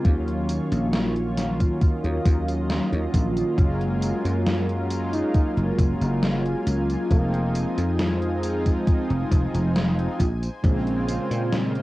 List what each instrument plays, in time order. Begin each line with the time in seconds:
0.04 slap bass D#2, analog polysynth D#3 F#3 A#3 C#4 F4, analog synth pad F4 C#5, kick, closed hi-hat, tambourine
0.28 closed hi-hat
0.49 closed hi-hat, tambourine
0.72 slap bass A#1, closed hi-hat, tambourine
0.93 snare, closed hi-hat, tambourine
1.16 closed hi-hat
1.36 analog polysynth D#3 F#3 A#3 C#4 F4, snare, closed hi-hat, tambourine
1.60 kick, closed hi-hat, tambourine
1.81 analog synth pad D#5, kick, closed hi-hat, tambourine
2.04 slap bass D#2, closed hi-hat
2.26 slap bass D#2, kick, closed hi-hat, tambourine
2.48 closed hi-hat, tambourine
2.70 snare, closed hi-hat, tambourine
2.92 slap bass D#2, closed hi-hat
3.14 slap bass A#1, kick, closed hi-hat, tambourine
3.37 closed hi-hat, tambourine
3.56 slap bass F#1, analog polysynth F#3 G#3 A#3 C#4 F4, analog synth pad A#4 G#5, kick, closed hi-hat, tambourine
3.81 closed hi-hat
4.02 closed hi-hat, tambourine
4.25 slap bass F#2, closed hi-hat, tambourine
4.46 snare, closed hi-hat, tambourine
4.69 closed hi-hat
4.89 analog polysynth F#3 G#3 A#3 C#4 F4, closed hi-hat, tambourine
5.13 flugelhorn D#4, closed hi-hat, tambourine
5.34 muted slap bass stroke, kick, closed hi-hat, tambourine
5.57 slap bass F#1, closed hi-hat
5.78 slap bass F#1, kick, closed hi-hat, tambourine
6.01 slap bass F#1, closed hi-hat, tambourine
6.23 snare, closed hi-hat, tambourine
6.46 closed hi-hat
6.67 slap bass C#2, closed hi-hat, tambourine
6.90 closed hi-hat, tambourine
7.09 slap bass F1, analog polysynth F3 G#3 C4 D#4 F4, flugelhorn A#3, analog synth pad D#5, kick, closed hi-hat, tambourine
7.34 closed hi-hat
7.55 closed hi-hat, tambourine
7.78 slap bass F2, closed hi-hat, tambourine
7.99 snare, closed hi-hat, tambourine
8.22 closed hi-hat
8.42 analog polysynth F3 G#3 C4 D#4 F4, closed hi-hat, tambourine
8.66 kick, closed hi-hat, tambourine
8.87 kick, closed hi-hat, tambourine
9.10 slap bass F1, closed hi-hat
9.31 slap bass F1, kick, closed hi-hat, tambourine
9.54 slap bass F1, closed hi-hat, tambourine
9.76 snare, closed hi-hat, tambourine
9.99 closed hi-hat
10.20 slap bass A#1, analog synth pad C5, kick, closed hi-hat, tambourine
10.43 closed hi-hat, tambourine
10.62 slap bass A#1, analog polysynth C#3 G#3 A#3 C4 F4, kick, closed hi-hat, tambourine
10.87 closed hi-hat
11.08 closed hi-hat, tambourine
11.31 slap bass A#2, closed hi-hat, tambourine
11.53 snare, closed hi-hat, tambourine
11.75 closed hi-hat